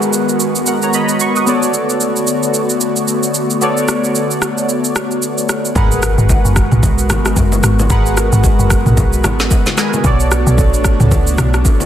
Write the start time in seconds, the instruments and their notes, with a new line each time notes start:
Already playing: analog synth pad D#3 G#3 B3 F#4, synth keys G#3 G#4 A#4 B4 F#5, downlifter
0.02 shaker
0.13 shaker
0.29 shaker
0.40 shaker
0.55 shaker
0.66 synth keys A#4 F#5, shaker
0.82 synth keys C#5 A#5, shaker
0.93 synth keys D#5 B5, shaker
1.09 shaker
1.20 synth keys C#6, shaker
1.36 synth keys F#5 D#6, shaker
1.47 analog synth pad D3 A3, synth keys B3 F#4 A4 C#5 D5, shaker
1.63 shaker
1.74 shaker
1.90 shaker
2.01 shaker
2.16 shaker
2.27 shaker
2.43 shaker
2.54 shaker
2.70 shaker
2.81 shaker
2.96 shaker
3.08 shaker
3.23 shaker
3.34 shaker
3.50 shaker
3.61 synth keys B3 F#4 A4 C#5 D5, shaker
3.77 shaker
3.88 cross-stick, shaker
4.04 shaker
4.15 shaker
4.31 shaker
4.42 cross-stick, shaker
4.58 shaker
4.69 shaker
4.84 shaker
4.96 cross-stick, shaker
5.11 shaker
5.22 shaker
5.38 shaker
5.49 cross-stick, shaker
5.65 shaker
5.75 log drum bass G#1, analog synth pad D#3 G#3 B3 F#4, synth keys G#3 G#4 A#4 B4 F#5, kick, impact, low conga, shaker
5.92 shaker
6.03 cross-stick, shaker
6.18 log drum bass G#1, shaker
6.29 kick, high bongo, shaker
6.45 log drum bass F#1, shaker
6.56 kick, cross-stick, shaker
6.72 log drum bass B1, mid tom, shaker
6.83 kick, low conga, shaker
6.98 shaker
7.10 log drum bass G#1, cross-stick, low bongo, low conga, shaker
7.25 cross-stick, high bongo, shaker
7.36 log drum bass F#1, kick, high bongo, shaker
7.52 low bongo, shaker
7.63 log drum bass G#1, cross-stick, high bongo, shaker
7.79 low bongo, shaker
7.90 log drum bass G#1, synth keys G#3 G#4 A#4 B4 F#5, kick, low conga, shaker
8.06 shaker
8.17 cross-stick, shaker
8.32 log drum bass G#1, shaker
8.44 kick, high bongo, shaker
8.59 log drum bass F#1, shaker
8.70 kick, cross-stick, shaker
8.86 log drum bass B1, mid tom, shaker
8.97 kick, low conga, shaker
9.13 shaker
9.24 log drum bass G#1, cross-stick, low bongo, low conga, shaker
9.40 snare, high bongo, shaker
9.51 kick, high bongo, shaker
9.66 snare, low bongo, shaker
9.77 synth keys G#3 G#4 A#4 B4 G#5, cross-stick, snare, high bongo, shaker
9.93 low bongo, shaker
10.04 log drum bass B1, analog synth pad A3 D4 F#4, synth keys B3 F#4 A4 C#5 D5, kick, low conga, shaker
10.20 shaker
10.31 cross-stick, shaker
10.47 log drum bass B1, shaker
10.58 kick, high bongo, shaker
10.74 log drum bass A1, shaker
10.84 kick, cross-stick, shaker
11.00 log drum bass C#2, mid tom, shaker
11.11 kick, low conga, shaker
11.27 shaker
11.38 log drum bass B1, cross-stick, low bongo, low conga, shaker
11.54 cross-stick, high bongo, shaker
11.65 log drum bass A1, kick, high bongo, shaker
11.80 low bongo, shaker